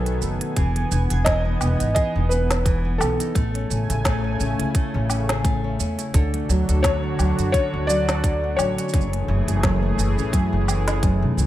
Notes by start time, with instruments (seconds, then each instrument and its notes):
Already playing: upright bass B1, nylon-string guitar B2 F#3 D#4, analog synth pad D#3 B3 A4, felt piano B4, synth texture G#5
0.06 closed hi-hat, shaker
0.22 upright bass F#1, nylon-string guitar A3, shaker
0.41 closed hi-hat
0.56 upright bass E1, nylon-string guitar E3 G#4, analog synth pad B3, kick, closed hi-hat, shaker
0.76 nylon-string guitar B3, closed hi-hat
0.91 upright bass E1, nylon-string guitar B3, shaker
1.10 upright bass E1, nylon-string guitar G#4, closed hi-hat, shaker
1.25 nylon-string guitar E3, felt piano D#5, kick, snare, closed hi-hat, shaker
1.45 nylon-string guitar B3
1.61 upright bass E1, nylon-string guitar B3, low woodblock, shaker
1.80 upright bass G#1, nylon-string guitar D#4, closed hi-hat, shaker
1.95 nylon-string guitar E3 G#4, felt piano D#5, kick, closed hi-hat, shaker
2.15 upright bass E1, nylon-string guitar B3
2.29 nylon-string guitar B3, felt piano B4, shaker
2.51 snare, closed hi-hat, shaker
2.65 nylon-string guitar E3, kick, closed hi-hat, shaker
2.85 nylon-string guitar B3
2.98 upright bass B1, nylon-string guitar B3, felt piano A4, low woodblock, shaker
3.20 nylon-string guitar D#4, closed hi-hat, shaker
3.35 upright bass A1, analog synth pad C#3 A3 G#5, nylon-string guitar A3, kick, closed hi-hat, shaker
3.54 nylon-string guitar C#4, closed hi-hat
3.70 upright bass A1, nylon-string guitar C#4, shaker
3.90 upright bass A1, closed hi-hat, shaker
4.05 nylon-string guitar A3, kick, snare, closed hi-hat, shaker
4.24 nylon-string guitar C#4
4.39 upright bass A1, nylon-string guitar C#4, shaker
4.59 upright bass C#2, nylon-string guitar E4, closed hi-hat
4.74 nylon-string guitar A3, kick, closed hi-hat, shaker
4.94 upright bass A1, nylon-string guitar C#4
5.09 nylon-string guitar C#4, low woodblock, shaker
5.29 nylon-string guitar G#4, snare, closed hi-hat
5.44 nylon-string guitar A3, kick, closed hi-hat, shaker
5.64 nylon-string guitar C#4
5.79 upright bass E2, nylon-string guitar C#4, shaker
5.99 nylon-string guitar E4, closed hi-hat, shaker
6.14 upright bass D2, nylon-string guitar D3 A4, analog synth pad D3 D4 F#4, kick, closed hi-hat, shaker
6.33 nylon-string guitar A3, closed hi-hat
6.49 upright bass D2, nylon-string guitar F#3, shaker
6.69 upright bass D2, nylon-string guitar A4, closed hi-hat, shaker
6.83 nylon-string guitar D3, felt piano C#5, kick, snare, closed hi-hat, shaker
7.03 nylon-string guitar A3
7.19 upright bass D2, nylon-string guitar F#3, low woodblock, shaker
7.39 upright bass F#2, closed hi-hat, shaker
7.52 nylon-string guitar D3 A4, felt piano C#5, kick, closed hi-hat, shaker
7.74 upright bass D2, nylon-string guitar A3
7.87 nylon-string guitar F#3, felt piano D5, shaker
8.09 nylon-string guitar A4, snare, closed hi-hat, shaker
8.24 nylon-string guitar D3, kick, closed hi-hat, shaker
8.44 nylon-string guitar A3
8.56 upright bass A1, nylon-string guitar F#3, felt piano C#5, low woodblock, shaker
8.78 nylon-string guitar C#4, closed hi-hat, shaker
8.89 shaker
8.93 upright bass F#1, nylon-string guitar F#2 G#4, analog synth pad E3 A3 G#4, kick, closed hi-hat, shaker
9.01 shaker
9.13 nylon-string guitar A3, closed hi-hat
9.28 upright bass F#1, nylon-string guitar E3
9.48 upright bass F#1, nylon-string guitar G#4, closed hi-hat, shaker
9.63 nylon-string guitar F#2, kick, snare, closed hi-hat
9.83 nylon-string guitar A3
9.98 upright bass F#1, nylon-string guitar E3, shaker
10.17 upright bass A1, nylon-string guitar C#4, shaker
10.33 nylon-string guitar F#2 G#4, kick, closed hi-hat, shaker
10.52 upright bass F#1, nylon-string guitar A3
10.68 nylon-string guitar E3, low woodblock, shaker
10.87 nylon-string guitar G#4, snare, closed hi-hat, shaker
11.03 nylon-string guitar F#2, kick, closed hi-hat, shaker
11.22 upright bass B1, nylon-string guitar A3
11.37 upright bass C#2, nylon-string guitar E3, shaker